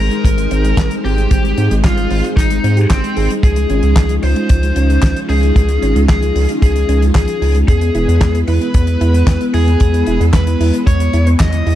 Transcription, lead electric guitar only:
0, 0, Header, 1, 2, 480
1, 0, Start_track
1, 0, Tempo, 530973
1, 1186, Time_signature, 4, 2, 24, 8
1, 10623, End_track
2, 0, Start_track
2, 0, Title_t, "Lead electric guitar"
2, 0, Program_c, 0, 29
2, 0, Note_on_c, 0, 70, 100
2, 850, Note_off_c, 0, 70, 0
2, 945, Note_on_c, 0, 67, 92
2, 1570, Note_off_c, 0, 67, 0
2, 1664, Note_on_c, 0, 65, 87
2, 2026, Note_off_c, 0, 65, 0
2, 2143, Note_on_c, 0, 63, 86
2, 2505, Note_off_c, 0, 63, 0
2, 2624, Note_on_c, 0, 60, 87
2, 2986, Note_off_c, 0, 60, 0
2, 3105, Note_on_c, 0, 68, 96
2, 3729, Note_off_c, 0, 68, 0
2, 3825, Note_on_c, 0, 72, 99
2, 4690, Note_off_c, 0, 72, 0
2, 4785, Note_on_c, 0, 68, 88
2, 5409, Note_off_c, 0, 68, 0
2, 5504, Note_on_c, 0, 68, 86
2, 5866, Note_off_c, 0, 68, 0
2, 5986, Note_on_c, 0, 68, 87
2, 6347, Note_off_c, 0, 68, 0
2, 6466, Note_on_c, 0, 68, 89
2, 6827, Note_off_c, 0, 68, 0
2, 6946, Note_on_c, 0, 68, 98
2, 7570, Note_off_c, 0, 68, 0
2, 7665, Note_on_c, 0, 71, 98
2, 8530, Note_off_c, 0, 71, 0
2, 8624, Note_on_c, 0, 68, 91
2, 9249, Note_off_c, 0, 68, 0
2, 9345, Note_on_c, 0, 71, 88
2, 9707, Note_off_c, 0, 71, 0
2, 9824, Note_on_c, 0, 73, 89
2, 10186, Note_off_c, 0, 73, 0
2, 10304, Note_on_c, 0, 75, 87
2, 10623, Note_off_c, 0, 75, 0
2, 10623, End_track
0, 0, End_of_file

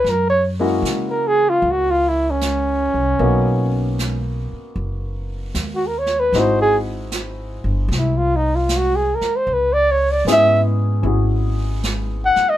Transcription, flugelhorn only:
0, 0, Header, 1, 2, 480
1, 0, Start_track
1, 0, Tempo, 785340
1, 35, Time_signature, 4, 2, 24, 8
1, 7686, End_track
2, 0, Start_track
2, 0, Title_t, "Flugelhorn"
2, 0, Program_c, 0, 56
2, 0, Note_on_c, 0, 71, 78
2, 61, Note_on_c, 0, 70, 79
2, 70, Note_off_c, 0, 71, 0
2, 179, Note_off_c, 0, 70, 0
2, 183, Note_on_c, 0, 73, 88
2, 284, Note_off_c, 0, 73, 0
2, 674, Note_on_c, 0, 70, 77
2, 779, Note_on_c, 0, 68, 92
2, 788, Note_off_c, 0, 70, 0
2, 913, Note_on_c, 0, 65, 76
2, 922, Note_off_c, 0, 68, 0
2, 1046, Note_on_c, 0, 66, 88
2, 1055, Note_off_c, 0, 65, 0
2, 1167, Note_on_c, 0, 65, 83
2, 1176, Note_off_c, 0, 66, 0
2, 1277, Note_on_c, 0, 64, 76
2, 1286, Note_off_c, 0, 65, 0
2, 1410, Note_on_c, 0, 61, 85
2, 1419, Note_off_c, 0, 64, 0
2, 2601, Note_off_c, 0, 61, 0
2, 3518, Note_on_c, 0, 66, 75
2, 3586, Note_on_c, 0, 70, 75
2, 3595, Note_off_c, 0, 66, 0
2, 3659, Note_on_c, 0, 73, 90
2, 3668, Note_off_c, 0, 70, 0
2, 3787, Note_on_c, 0, 71, 82
2, 3796, Note_off_c, 0, 73, 0
2, 3911, Note_on_c, 0, 72, 89
2, 3920, Note_off_c, 0, 71, 0
2, 4042, Note_off_c, 0, 72, 0
2, 4045, Note_on_c, 0, 68, 87
2, 4138, Note_off_c, 0, 68, 0
2, 4878, Note_on_c, 0, 64, 70
2, 4997, Note_on_c, 0, 65, 86
2, 5006, Note_off_c, 0, 64, 0
2, 5110, Note_on_c, 0, 63, 77
2, 5119, Note_off_c, 0, 65, 0
2, 5230, Note_on_c, 0, 65, 71
2, 5239, Note_off_c, 0, 63, 0
2, 5357, Note_on_c, 0, 66, 81
2, 5366, Note_off_c, 0, 65, 0
2, 5476, Note_on_c, 0, 68, 71
2, 5486, Note_off_c, 0, 66, 0
2, 5594, Note_on_c, 0, 70, 73
2, 5603, Note_off_c, 0, 68, 0
2, 5723, Note_on_c, 0, 72, 80
2, 5732, Note_off_c, 0, 70, 0
2, 5829, Note_on_c, 0, 71, 83
2, 5838, Note_off_c, 0, 72, 0
2, 5948, Note_on_c, 0, 74, 94
2, 5957, Note_off_c, 0, 71, 0
2, 6058, Note_on_c, 0, 73, 83
2, 6067, Note_off_c, 0, 74, 0
2, 6182, Note_on_c, 0, 74, 76
2, 6191, Note_off_c, 0, 73, 0
2, 6267, Note_off_c, 0, 74, 0
2, 6308, Note_on_c, 0, 76, 94
2, 6493, Note_off_c, 0, 76, 0
2, 7491, Note_on_c, 0, 78, 95
2, 7638, Note_on_c, 0, 75, 82
2, 7647, Note_off_c, 0, 78, 0
2, 7686, Note_off_c, 0, 75, 0
2, 7686, End_track
0, 0, End_of_file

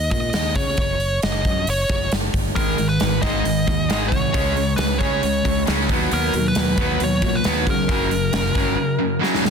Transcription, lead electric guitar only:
0, 0, Header, 1, 2, 480
1, 0, Start_track
1, 0, Tempo, 444115
1, 848, Time_signature, 4, 2, 24, 8
1, 10268, End_track
2, 0, Start_track
2, 0, Title_t, "Lead electric guitar"
2, 0, Program_c, 0, 29
2, 125, Note_on_c, 0, 75, 83
2, 599, Note_off_c, 0, 75, 0
2, 604, Note_on_c, 0, 73, 102
2, 1284, Note_off_c, 0, 73, 0
2, 1335, Note_on_c, 0, 75, 80
2, 1827, Note_off_c, 0, 75, 0
2, 1835, Note_on_c, 0, 73, 83
2, 2270, Note_off_c, 0, 73, 0
2, 2760, Note_on_c, 0, 70, 82
2, 3118, Note_off_c, 0, 70, 0
2, 3122, Note_on_c, 0, 71, 77
2, 3461, Note_off_c, 0, 71, 0
2, 3475, Note_on_c, 0, 75, 99
2, 4408, Note_off_c, 0, 75, 0
2, 4412, Note_on_c, 0, 73, 101
2, 5109, Note_off_c, 0, 73, 0
2, 5148, Note_on_c, 0, 71, 79
2, 5382, Note_off_c, 0, 71, 0
2, 5388, Note_on_c, 0, 73, 81
2, 6077, Note_off_c, 0, 73, 0
2, 6629, Note_on_c, 0, 70, 83
2, 6991, Note_off_c, 0, 70, 0
2, 7004, Note_on_c, 0, 71, 79
2, 7604, Note_on_c, 0, 73, 103
2, 7605, Note_off_c, 0, 71, 0
2, 7948, Note_on_c, 0, 71, 77
2, 7958, Note_off_c, 0, 73, 0
2, 8310, Note_off_c, 0, 71, 0
2, 8321, Note_on_c, 0, 70, 86
2, 9940, Note_off_c, 0, 70, 0
2, 10268, End_track
0, 0, End_of_file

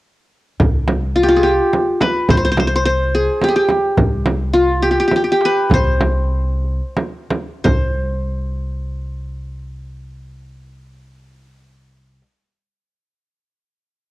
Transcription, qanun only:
0, 0, Header, 1, 2, 480
1, 0, Start_track
1, 0, Tempo, 562324
1, 517, Time_signature, 3, 2, 24, 8
1, 3877, Tempo, 593472
1, 5317, Tempo, 663717
1, 6277, Tempo, 705882
1, 10667, End_track
2, 0, Start_track
2, 0, Title_t, "Qanun"
2, 0, Program_c, 0, 107
2, 988, Note_on_c, 0, 65, 59
2, 1053, Note_on_c, 0, 67, 56
2, 1094, Note_off_c, 0, 65, 0
2, 1098, Note_on_c, 0, 65, 68
2, 1165, Note_on_c, 0, 68, 55
2, 1216, Note_off_c, 0, 67, 0
2, 1222, Note_on_c, 0, 67, 77
2, 1273, Note_off_c, 0, 68, 0
2, 1720, Note_on_c, 0, 71, 77
2, 1965, Note_on_c, 0, 72, 85
2, 2016, Note_off_c, 0, 71, 0
2, 2021, Note_off_c, 0, 72, 0
2, 2024, Note_on_c, 0, 72, 65
2, 2084, Note_off_c, 0, 72, 0
2, 2088, Note_on_c, 0, 72, 77
2, 2143, Note_off_c, 0, 72, 0
2, 2147, Note_on_c, 0, 72, 63
2, 2212, Note_off_c, 0, 72, 0
2, 2215, Note_on_c, 0, 72, 71
2, 2246, Note_off_c, 0, 65, 0
2, 2276, Note_off_c, 0, 72, 0
2, 2279, Note_on_c, 0, 72, 61
2, 2294, Note_off_c, 0, 67, 0
2, 2347, Note_off_c, 0, 72, 0
2, 2351, Note_on_c, 0, 72, 77
2, 2431, Note_off_c, 0, 72, 0
2, 2435, Note_on_c, 0, 72, 83
2, 2683, Note_on_c, 0, 68, 70
2, 2931, Note_on_c, 0, 67, 64
2, 2969, Note_off_c, 0, 68, 0
2, 2973, Note_on_c, 0, 68, 53
2, 3024, Note_off_c, 0, 67, 0
2, 3035, Note_on_c, 0, 67, 62
2, 3086, Note_off_c, 0, 68, 0
2, 3336, Note_off_c, 0, 72, 0
2, 3870, Note_on_c, 0, 65, 67
2, 4095, Note_off_c, 0, 67, 0
2, 4105, Note_on_c, 0, 67, 67
2, 4171, Note_off_c, 0, 67, 0
2, 4174, Note_on_c, 0, 67, 55
2, 4243, Note_off_c, 0, 67, 0
2, 4246, Note_on_c, 0, 67, 65
2, 4307, Note_off_c, 0, 67, 0
2, 4310, Note_on_c, 0, 67, 56
2, 4373, Note_off_c, 0, 67, 0
2, 4376, Note_on_c, 0, 67, 59
2, 4437, Note_off_c, 0, 67, 0
2, 4440, Note_on_c, 0, 67, 45
2, 4501, Note_off_c, 0, 67, 0
2, 4505, Note_on_c, 0, 67, 67
2, 4612, Note_on_c, 0, 71, 80
2, 4843, Note_on_c, 0, 72, 87
2, 4892, Note_off_c, 0, 71, 0
2, 4958, Note_off_c, 0, 65, 0
2, 5498, Note_off_c, 0, 67, 0
2, 5765, Note_off_c, 0, 72, 0
2, 6271, Note_on_c, 0, 72, 65
2, 9370, Note_off_c, 0, 72, 0
2, 10667, End_track
0, 0, End_of_file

